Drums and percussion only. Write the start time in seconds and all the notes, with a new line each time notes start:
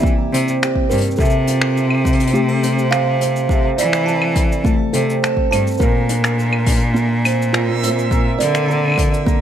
0.03 kick, cabasa
0.34 closed hi-hat, cabasa
0.48 cabasa
0.63 finger snap, cabasa
0.76 kick
0.90 closed hi-hat, cabasa
0.94 closed hi-hat
0.97 closed hi-hat
1.01 closed hi-hat
1.06 cabasa
1.11 cabasa
1.16 kick, cabasa
1.20 cabasa
1.25 cabasa
1.30 cabasa
1.47 closed hi-hat, cabasa
1.61 finger snap
1.77 cabasa
1.90 claves
1.95 claves
1.98 claves
2.01 claves
2.05 kick, closed hi-hat, cabasa
2.13 closed hi-hat
2.20 closed hi-hat, cabasa
2.27 closed hi-hat
2.35 cabasa
2.63 closed hi-hat, cabasa
2.79 cabasa
2.92 finger snap, cabasa
3.21 closed hi-hat, cabasa
3.36 cabasa
3.49 kick, cabasa
3.78 closed hi-hat, cabasa
3.93 finger snap, cabasa
4.08 cabasa
4.22 claves
4.35 kick, closed hi-hat, cabasa
4.52 cabasa
4.65 kick, cabasa
4.94 closed hi-hat, cabasa
5.10 cabasa
5.24 finger snap, cabasa
5.37 kick
5.52 closed hi-hat, cabasa, claves
5.67 cabasa
5.71 cabasa
5.74 cabasa
5.77 kick, cabasa
5.81 cabasa
6.09 closed hi-hat, cabasa
6.24 finger snap, cabasa
6.39 cabasa
6.53 claves
6.66 kick, closed hi-hat, cabasa
6.69 closed hi-hat
6.71 closed hi-hat
6.74 closed hi-hat
6.76 closed hi-hat
6.79 closed hi-hat
6.96 cabasa
7.25 closed hi-hat, cabasa, claves
7.42 cabasa
7.54 finger snap, cabasa
7.83 closed hi-hat, cabasa
7.99 cabasa
8.11 kick, cabasa
8.40 closed hi-hat, cabasa
8.55 finger snap, cabasa
8.71 cabasa
8.85 claves
8.88 claves
8.90 claves
8.92 claves
8.94 claves
8.96 kick, closed hi-hat, claves
9.14 cabasa
9.27 kick, cabasa